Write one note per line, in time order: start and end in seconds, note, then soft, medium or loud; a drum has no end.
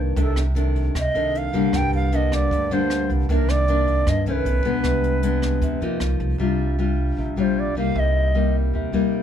0.00 0.14 C2 medium
0.00 0.14 G2 medium
0.00 0.13 D#3 medium
0.00 0.13 A#3 medium
0.00 0.13 D4 medium
0.16 0.90 C2 loud
0.16 0.92 C3 medium
0.16 0.41 D#3 soft
0.16 0.42 A3 soft
0.16 0.42 D4 medium
0.16 kick medium
0.16 closed hi-hat soft
0.22 0.37 A4 medium
0.36 cross-stick medium
0.36 closed hi-hat soft
0.55 0.94 D#3 medium
0.55 0.94 A3 medium
0.55 0.94 D4 medium
0.55 closed hi-hat soft
0.75 kick soft
0.75 closed hi-hat soft
0.95 1.13 C2 medium
0.95 1.53 C3 soft
0.95 kick medium
0.95 cross-stick medium
0.95 closed hi-hat soft
1.00 1.39 D#5 medium
1.14 1.50 C2 medium
1.14 1.50 D#3 medium
1.14 1.50 A3 medium
1.14 1.50 D4 medium
1.14 closed hi-hat soft
1.35 1.78 F5 medium
1.35 closed hi-hat soft
1.53 1.71 C2 medium
1.53 2.08 D3 medium
1.53 2.08 G3 medium
1.53 2.08 A#3 medium
1.53 2.09 D4 medium
1.53 kick soft
1.53 closed hi-hat soft
1.73 2.46 C2 loud
1.73 2.48 G2 medium
1.73 1.94 G5 loud
1.73 kick medium
1.73 cross-stick medium
1.73 closed hi-hat soft
1.93 2.17 F5 medium
1.93 closed hi-hat soft
2.12 2.67 D3 medium
2.12 2.67 G3 soft
2.12 2.67 A#3 medium
2.12 2.68 D4 medium
2.12 2.36 D#5 medium
2.12 closed hi-hat soft
2.32 2.75 D5 medium
2.32 kick soft
2.32 cross-stick medium
2.32 closed hi-hat soft
2.51 2.69 D2 medium
2.51 3.27 G2 soft
2.51 kick medium
2.51 closed hi-hat soft
2.70 3.06 D2 medium
2.70 3.26 D3 medium
2.70 3.26 G3 medium
2.70 3.26 A#3 medium
2.70 3.26 D4 medium
2.70 3.10 C5 medium
2.70 closed hi-hat soft
2.90 cross-stick medium
2.90 closed hi-hat soft
3.10 3.27 C2 medium
3.10 kick soft
3.10 closed hi-hat soft
3.29 4.02 C2 loud
3.29 4.05 C3 medium
3.29 3.65 D#3 medium
3.29 3.65 A#3 medium
3.29 3.65 D4 medium
3.29 3.51 A#4 medium
3.29 kick medium
3.29 closed hi-hat soft
3.49 4.11 D5 loud
3.49 cross-stick medium
3.49 closed hi-hat soft
3.68 4.23 D#3 medium
3.68 4.23 A#3 medium
3.68 4.23 D4 medium
3.68 closed hi-hat soft
3.87 kick soft
3.87 closed hi-hat soft
4.07 4.24 G2 medium
4.07 4.43 G2 medium
4.07 4.27 D#5 medium
4.07 kick medium
4.07 cross-stick medium
4.07 closed hi-hat soft
4.26 4.44 C2 medium
4.26 4.62 D#3 medium
4.26 4.62 A3 soft
4.26 4.62 C#4 medium
4.26 4.34 C5 medium
4.26 closed hi-hat soft
4.33 5.98 B4 medium
4.45 4.63 B1 loud
4.45 closed hi-hat soft
4.65 4.84 B1 medium
4.65 5.20 G#3 medium
4.65 5.20 B3 medium
4.65 5.20 D4 medium
4.65 kick soft
4.65 closed hi-hat soft
4.84 5.58 C2 loud
4.84 5.60 C3 medium
4.84 kick medium
4.84 cross-stick medium
4.84 closed hi-hat soft
5.04 closed hi-hat soft
5.23 5.78 G#3 medium
5.23 5.78 B3 medium
5.23 5.79 D4 medium
5.23 closed hi-hat soft
5.42 kick soft
5.42 cross-stick medium
5.42 closed hi-hat soft
5.62 5.80 F2 medium
5.62 5.99 C3 medium
5.62 kick medium
5.62 closed hi-hat soft
5.81 5.99 F2 medium
5.81 6.37 F3 medium
5.81 6.37 A#3 medium
5.81 6.37 D#4 medium
5.81 closed hi-hat soft
6.00 6.18 C2 medium
6.00 cross-stick medium
6.00 closed hi-hat soft
6.20 6.38 C2 medium
6.20 kick soft
6.20 closed hi-hat soft
6.38 7.13 C2 medium
6.38 7.16 C3 medium
6.38 6.75 G3 medium
6.38 6.76 D4 medium
6.38 6.76 F4 medium
6.79 7.34 G3 soft
6.79 7.34 D4 medium
6.79 7.34 F4 medium
7.17 7.35 A#1 medium
7.17 7.94 C3 soft
7.36 7.73 A#1 medium
7.36 7.73 G3 medium
7.36 7.73 D4 medium
7.36 7.73 F4 medium
7.36 7.44 C#5 medium
7.43 7.61 C5 medium
7.59 7.77 D5 medium
7.75 7.94 C2 medium
7.75 8.32 G3 medium
7.75 8.32 A#3 medium
7.75 8.32 D#4 medium
7.75 8.01 F5 medium
7.95 8.69 C2 loud
7.95 8.71 C3 medium
7.95 8.56 D#5 medium
8.35 8.90 G3 medium
8.35 8.90 A#3 medium
8.35 8.90 D#4 medium
8.73 8.92 D#2 medium
8.73 9.23 C3 medium
8.92 9.23 D#2 medium
8.92 9.23 G3 medium
8.92 9.23 A#3 medium
8.92 9.23 D#4 medium